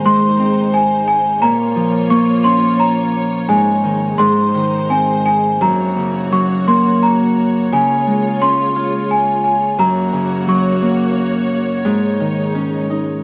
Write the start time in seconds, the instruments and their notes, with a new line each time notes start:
Already playing: harp G#2 D#3 A#3 C#4, string section G#3 D#4 C5
0.05 harp G#3, celesta C6
0.39 harp C4
0.74 celesta G#5
1.08 celesta G#5
1.41 harp A#2, string section A#3 F4 C#5, celesta A#5
1.76 harp F3
2.10 harp A#3, celesta C#6
2.44 harp C#4, celesta C6
2.80 celesta A#5
3.47 harp G#2, string section G#3 D#4, celesta G#5
3.84 harp D#3
4.18 harp G#2, string section D#4 C5, celesta C6
4.54 harp D#3
4.90 harp C4, celesta G#5
5.25 harp D#4, celesta G#5
5.61 harp F#2, string section A#3 F#4 C#5, celesta A#5
5.96 harp C#3
6.32 harp F#3, celesta C#6
6.68 harp A#3, celesta C6
7.03 celesta A#5
7.71 harp C#3, string section G#3 F4, celesta G#5
8.07 harp G#3
8.42 harp C#4, celesta C6
8.76 harp F4
9.11 celesta G#5
9.44 celesta G#5
9.78 harp F#2, string section A#3 F#4 C#5, celesta A#5
10.13 harp C#3
10.47 harp F#3, celesta C#6
10.82 harp A#3
11.84 harp G#2, string section G#3 D#4
12.20 harp D#3
12.55 harp C#4
12.90 harp D#4